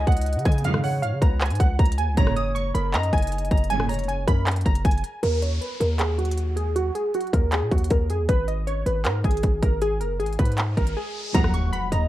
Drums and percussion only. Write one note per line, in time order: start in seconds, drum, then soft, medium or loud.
0.07 kick medium
0.07 closed hi-hat medium
0.12 closed hi-hat medium
0.17 closed hi-hat medium
0.21 closed hi-hat medium
0.26 closed hi-hat medium
0.33 closed hi-hat medium
0.39 closed hi-hat medium
0.45 kick loud
0.45 closed hi-hat medium
0.52 closed hi-hat medium
0.58 closed hi-hat medium
0.64 closed hi-hat medium
0.74 cross-stick loud
0.84 open hi-hat medium
1.03 closed hi-hat medium
1.22 kick medium
1.22 closed hi-hat medium
1.41 clap loud
1.41 closed hi-hat soft
1.46 closed hi-hat medium
1.50 closed hi-hat medium
1.55 closed hi-hat medium
1.60 kick medium
1.60 closed hi-hat medium
1.79 kick loud
1.79 closed hi-hat medium
1.85 closed hi-hat medium
1.92 closed hi-hat medium
1.98 closed hi-hat medium
2.17 kick loud
2.17 closed hi-hat medium
2.27 cross-stick loud
2.36 closed hi-hat medium
2.56 closed hi-hat medium
2.75 closed hi-hat medium
2.94 clap loud
2.94 closed hi-hat medium
3.03 closed hi-hat medium
3.13 kick medium
3.13 closed hi-hat medium
3.18 closed hi-hat medium
3.22 closed hi-hat medium
3.27 closed hi-hat medium
3.32 closed hi-hat medium
3.38 closed hi-hat medium
3.45 closed hi-hat medium
3.51 kick loud
3.51 closed hi-hat medium
3.57 closed hi-hat medium
3.64 closed hi-hat medium
3.70 closed hi-hat medium
3.80 cross-stick loud
3.89 closed hi-hat medium
3.89 open hi-hat medium
3.94 closed hi-hat medium
3.99 closed hi-hat medium
4.04 closed hi-hat soft
4.09 closed hi-hat medium
4.28 kick loud
4.28 closed hi-hat medium
4.47 clap loud
4.47 closed hi-hat medium
4.51 closed hi-hat medium
4.56 closed hi-hat medium
4.61 closed hi-hat medium
4.66 kick medium
4.66 closed hi-hat medium
4.75 closed hi-hat medium
4.85 kick loud
4.85 closed hi-hat medium
4.91 closed hi-hat medium
4.98 closed hi-hat soft
5.04 closed hi-hat medium
5.23 closed hi-hat medium
5.42 closed hi-hat medium
5.62 closed hi-hat medium
5.81 closed hi-hat medium
5.99 clap loud
5.99 closed hi-hat medium
6.19 closed hi-hat soft
6.25 closed hi-hat medium
6.31 closed hi-hat medium
6.37 closed hi-hat medium
6.57 closed hi-hat medium
6.76 closed hi-hat medium
6.95 closed hi-hat medium
7.14 closed hi-hat medium
7.21 closed hi-hat medium
7.27 closed hi-hat soft
7.33 kick medium
7.33 closed hi-hat medium
7.52 clap loud
7.52 closed hi-hat medium
7.71 kick medium
7.71 closed hi-hat soft
7.78 closed hi-hat medium
7.84 closed hi-hat medium
7.90 kick loud
7.90 closed hi-hat medium
8.10 closed hi-hat medium
8.29 kick loud
8.29 closed hi-hat medium
8.48 closed hi-hat medium
8.67 closed hi-hat medium
8.86 closed hi-hat medium
9.05 clap loud
9.05 closed hi-hat medium
9.24 kick medium
9.24 closed hi-hat soft
9.31 closed hi-hat medium
9.37 closed hi-hat medium
9.43 kick loud
9.43 closed hi-hat medium
9.63 kick medium
9.63 closed hi-hat medium
9.82 closed hi-hat medium
10.01 closed hi-hat medium
10.20 closed hi-hat medium
10.26 closed hi-hat medium
10.33 closed hi-hat medium
10.39 kick medium
10.39 closed hi-hat medium
10.45 closed hi-hat medium
10.52 closed hi-hat medium
10.57 clap loud
10.57 closed hi-hat medium
10.77 kick medium
10.77 closed hi-hat soft
10.87 closed hi-hat medium
11.34 kick loud
11.34 closed hi-hat medium
11.44 cross-stick loud
11.54 closed hi-hat medium
11.73 closed hi-hat medium
11.92 closed hi-hat medium